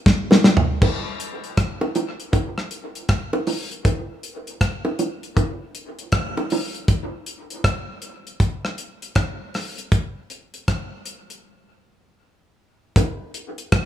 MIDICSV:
0, 0, Header, 1, 2, 480
1, 0, Start_track
1, 0, Tempo, 759494
1, 516, Time_signature, 4, 2, 24, 8
1, 8756, End_track
2, 0, Start_track
2, 0, Title_t, "Drums"
2, 39, Note_on_c, 9, 36, 120
2, 42, Note_on_c, 9, 38, 67
2, 102, Note_off_c, 9, 36, 0
2, 105, Note_off_c, 9, 38, 0
2, 195, Note_on_c, 9, 60, 85
2, 201, Note_on_c, 9, 38, 72
2, 258, Note_off_c, 9, 60, 0
2, 264, Note_off_c, 9, 38, 0
2, 280, Note_on_c, 9, 38, 75
2, 284, Note_on_c, 9, 61, 73
2, 343, Note_off_c, 9, 38, 0
2, 348, Note_off_c, 9, 61, 0
2, 359, Note_on_c, 9, 43, 104
2, 422, Note_off_c, 9, 43, 0
2, 517, Note_on_c, 9, 36, 120
2, 517, Note_on_c, 9, 49, 91
2, 522, Note_on_c, 9, 60, 66
2, 580, Note_off_c, 9, 36, 0
2, 580, Note_off_c, 9, 49, 0
2, 585, Note_off_c, 9, 60, 0
2, 758, Note_on_c, 9, 42, 67
2, 821, Note_off_c, 9, 42, 0
2, 908, Note_on_c, 9, 42, 41
2, 971, Note_off_c, 9, 42, 0
2, 994, Note_on_c, 9, 42, 69
2, 995, Note_on_c, 9, 36, 98
2, 996, Note_on_c, 9, 37, 91
2, 1057, Note_off_c, 9, 42, 0
2, 1059, Note_off_c, 9, 36, 0
2, 1059, Note_off_c, 9, 37, 0
2, 1145, Note_on_c, 9, 60, 86
2, 1209, Note_off_c, 9, 60, 0
2, 1233, Note_on_c, 9, 42, 75
2, 1236, Note_on_c, 9, 61, 72
2, 1296, Note_off_c, 9, 42, 0
2, 1299, Note_off_c, 9, 61, 0
2, 1388, Note_on_c, 9, 42, 49
2, 1451, Note_off_c, 9, 42, 0
2, 1472, Note_on_c, 9, 60, 84
2, 1473, Note_on_c, 9, 42, 83
2, 1474, Note_on_c, 9, 36, 101
2, 1535, Note_off_c, 9, 60, 0
2, 1536, Note_off_c, 9, 42, 0
2, 1537, Note_off_c, 9, 36, 0
2, 1629, Note_on_c, 9, 37, 57
2, 1692, Note_off_c, 9, 37, 0
2, 1712, Note_on_c, 9, 42, 66
2, 1775, Note_off_c, 9, 42, 0
2, 1866, Note_on_c, 9, 42, 46
2, 1929, Note_off_c, 9, 42, 0
2, 1951, Note_on_c, 9, 42, 69
2, 1953, Note_on_c, 9, 36, 113
2, 1955, Note_on_c, 9, 37, 102
2, 2014, Note_off_c, 9, 42, 0
2, 2016, Note_off_c, 9, 36, 0
2, 2018, Note_off_c, 9, 37, 0
2, 2105, Note_on_c, 9, 60, 90
2, 2169, Note_off_c, 9, 60, 0
2, 2192, Note_on_c, 9, 46, 89
2, 2194, Note_on_c, 9, 61, 71
2, 2255, Note_off_c, 9, 46, 0
2, 2257, Note_off_c, 9, 61, 0
2, 2347, Note_on_c, 9, 42, 44
2, 2410, Note_off_c, 9, 42, 0
2, 2433, Note_on_c, 9, 36, 127
2, 2434, Note_on_c, 9, 60, 65
2, 2435, Note_on_c, 9, 42, 92
2, 2496, Note_off_c, 9, 36, 0
2, 2497, Note_off_c, 9, 60, 0
2, 2498, Note_off_c, 9, 42, 0
2, 2675, Note_on_c, 9, 42, 61
2, 2738, Note_off_c, 9, 42, 0
2, 2826, Note_on_c, 9, 42, 47
2, 2889, Note_off_c, 9, 42, 0
2, 2913, Note_on_c, 9, 36, 87
2, 2914, Note_on_c, 9, 42, 81
2, 2915, Note_on_c, 9, 37, 102
2, 2976, Note_off_c, 9, 36, 0
2, 2977, Note_off_c, 9, 42, 0
2, 2979, Note_off_c, 9, 37, 0
2, 3063, Note_on_c, 9, 60, 84
2, 3127, Note_off_c, 9, 60, 0
2, 3153, Note_on_c, 9, 42, 66
2, 3155, Note_on_c, 9, 61, 73
2, 3216, Note_off_c, 9, 42, 0
2, 3218, Note_off_c, 9, 61, 0
2, 3307, Note_on_c, 9, 42, 44
2, 3370, Note_off_c, 9, 42, 0
2, 3392, Note_on_c, 9, 36, 88
2, 3392, Note_on_c, 9, 42, 77
2, 3395, Note_on_c, 9, 60, 76
2, 3455, Note_off_c, 9, 36, 0
2, 3455, Note_off_c, 9, 42, 0
2, 3458, Note_off_c, 9, 60, 0
2, 3632, Note_on_c, 9, 42, 60
2, 3695, Note_off_c, 9, 42, 0
2, 3783, Note_on_c, 9, 42, 44
2, 3846, Note_off_c, 9, 42, 0
2, 3867, Note_on_c, 9, 42, 81
2, 3871, Note_on_c, 9, 36, 104
2, 3872, Note_on_c, 9, 37, 115
2, 3931, Note_off_c, 9, 42, 0
2, 3934, Note_off_c, 9, 36, 0
2, 3935, Note_off_c, 9, 37, 0
2, 4028, Note_on_c, 9, 60, 84
2, 4092, Note_off_c, 9, 60, 0
2, 4109, Note_on_c, 9, 46, 84
2, 4121, Note_on_c, 9, 61, 75
2, 4172, Note_off_c, 9, 46, 0
2, 4184, Note_off_c, 9, 61, 0
2, 4263, Note_on_c, 9, 42, 42
2, 4326, Note_off_c, 9, 42, 0
2, 4349, Note_on_c, 9, 42, 89
2, 4350, Note_on_c, 9, 36, 126
2, 4412, Note_off_c, 9, 42, 0
2, 4413, Note_off_c, 9, 36, 0
2, 4591, Note_on_c, 9, 42, 64
2, 4654, Note_off_c, 9, 42, 0
2, 4742, Note_on_c, 9, 42, 43
2, 4805, Note_off_c, 9, 42, 0
2, 4830, Note_on_c, 9, 36, 100
2, 4830, Note_on_c, 9, 42, 74
2, 4832, Note_on_c, 9, 37, 103
2, 4893, Note_off_c, 9, 36, 0
2, 4894, Note_off_c, 9, 42, 0
2, 4895, Note_off_c, 9, 37, 0
2, 5067, Note_on_c, 9, 42, 63
2, 5130, Note_off_c, 9, 42, 0
2, 5225, Note_on_c, 9, 42, 47
2, 5288, Note_off_c, 9, 42, 0
2, 5309, Note_on_c, 9, 36, 99
2, 5309, Note_on_c, 9, 42, 76
2, 5372, Note_off_c, 9, 36, 0
2, 5372, Note_off_c, 9, 42, 0
2, 5465, Note_on_c, 9, 37, 65
2, 5528, Note_off_c, 9, 37, 0
2, 5549, Note_on_c, 9, 42, 61
2, 5612, Note_off_c, 9, 42, 0
2, 5702, Note_on_c, 9, 42, 48
2, 5765, Note_off_c, 9, 42, 0
2, 5785, Note_on_c, 9, 42, 74
2, 5788, Note_on_c, 9, 36, 109
2, 5790, Note_on_c, 9, 37, 98
2, 5848, Note_off_c, 9, 42, 0
2, 5851, Note_off_c, 9, 36, 0
2, 5853, Note_off_c, 9, 37, 0
2, 6031, Note_on_c, 9, 46, 88
2, 6036, Note_on_c, 9, 37, 61
2, 6094, Note_off_c, 9, 46, 0
2, 6099, Note_off_c, 9, 37, 0
2, 6181, Note_on_c, 9, 42, 46
2, 6245, Note_off_c, 9, 42, 0
2, 6268, Note_on_c, 9, 42, 95
2, 6269, Note_on_c, 9, 36, 120
2, 6332, Note_off_c, 9, 36, 0
2, 6332, Note_off_c, 9, 42, 0
2, 6510, Note_on_c, 9, 42, 70
2, 6573, Note_off_c, 9, 42, 0
2, 6660, Note_on_c, 9, 42, 47
2, 6723, Note_off_c, 9, 42, 0
2, 6749, Note_on_c, 9, 42, 71
2, 6750, Note_on_c, 9, 36, 91
2, 6751, Note_on_c, 9, 37, 97
2, 6813, Note_off_c, 9, 36, 0
2, 6813, Note_off_c, 9, 42, 0
2, 6814, Note_off_c, 9, 37, 0
2, 6987, Note_on_c, 9, 42, 66
2, 7050, Note_off_c, 9, 42, 0
2, 7142, Note_on_c, 9, 42, 49
2, 7205, Note_off_c, 9, 42, 0
2, 8191, Note_on_c, 9, 36, 125
2, 8191, Note_on_c, 9, 42, 105
2, 8198, Note_on_c, 9, 60, 72
2, 8254, Note_off_c, 9, 36, 0
2, 8254, Note_off_c, 9, 42, 0
2, 8262, Note_off_c, 9, 60, 0
2, 8432, Note_on_c, 9, 42, 73
2, 8495, Note_off_c, 9, 42, 0
2, 8583, Note_on_c, 9, 42, 49
2, 8646, Note_off_c, 9, 42, 0
2, 8672, Note_on_c, 9, 36, 97
2, 8672, Note_on_c, 9, 42, 82
2, 8673, Note_on_c, 9, 37, 124
2, 8735, Note_off_c, 9, 42, 0
2, 8736, Note_off_c, 9, 36, 0
2, 8736, Note_off_c, 9, 37, 0
2, 8756, End_track
0, 0, End_of_file